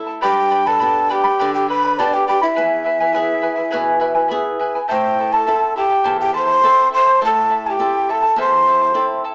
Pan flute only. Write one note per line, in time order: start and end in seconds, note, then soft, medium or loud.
0.23 0.69 G4 medium
0.67 1.13 A4 medium
1.11 1.54 G4 medium
1.55 1.68 G4 medium
1.69 2.00 B4 medium
1.99 2.16 D5 medium
2.15 2.28 G4 medium
2.29 2.41 G4 medium
2.42 4.56 E4 medium
4.89 5.33 C5 medium
5.32 5.76 A4 medium
5.77 6.17 G4 medium
6.21 6.33 G4 medium
6.36 6.89 C5 medium
6.96 7.21 C5 medium
7.25 7.70 A4 medium
7.69 8.14 G4 medium
8.12 8.38 A4 medium
8.39 9.20 C5 medium